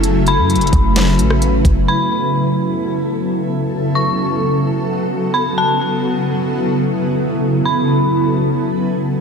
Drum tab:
HH |x---x---xxxxx---x---x---x---x---|--------------------------------|--------------------------------|--------------------------------|
SD |----------------o-----r---------|--------------------------------|--------------------------------|--------------------------------|
BD |------------o---------------o---|--------------------------------|--------------------------------|--------------------------------|

HH |--------------------------------|
SD |--------------------------------|
BD |--------------------------------|